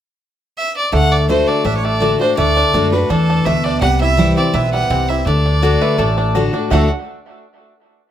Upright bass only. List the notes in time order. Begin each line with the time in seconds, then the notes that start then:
0.93 D2
1.65 A1
2.38 D2
2.74 F#2
3.10 E2
3.46 D2
3.82 C2
4.54 B1
4.90 C2
5.26 D2
5.98 A1
6.71 D2